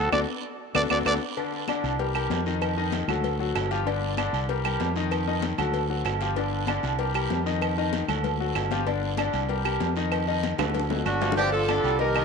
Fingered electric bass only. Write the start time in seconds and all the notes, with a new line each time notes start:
Already playing: D2
0.12 D2
0.75 D2
0.90 D2
1.06 D2
1.84 C2
2.30 F2
3.08 D2
3.55 G1
4.33 C2
4.80 F2
5.58 D2
6.05 G1
6.83 C2
7.30 F2
8.08 D2
8.55 G1
9.33 C2
9.80 F2
10.58 D2
11.05 G1
11.84 C2